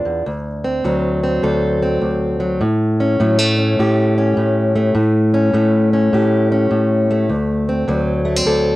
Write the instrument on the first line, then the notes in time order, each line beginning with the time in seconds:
steel-string acoustic guitar
Already playing: B3 D4 F4
0.05 E2
0.26 D2
0.64 C4
0.84 D2 F#3
1.24 C4
1.43 D2 A4
1.82 C4
2.01 D2
2.40 F#3
2.61 A2
3.00 C#4
3.20 A2 F#3
3.39 A3
3.59 C#4
3.79 A2 G4
4.18 C#4
4.37 A2
4.76 A3
4.95 A2
5.34 C#4
5.53 A2 A3
5.93 C#4
6.13 A2 G4
6.52 C#4
6.71 A2
7.11 A3
7.29 D2
7.69 C4
7.88 D2 F#3
8.25 A3
8.36 C4
8.46 D2 A4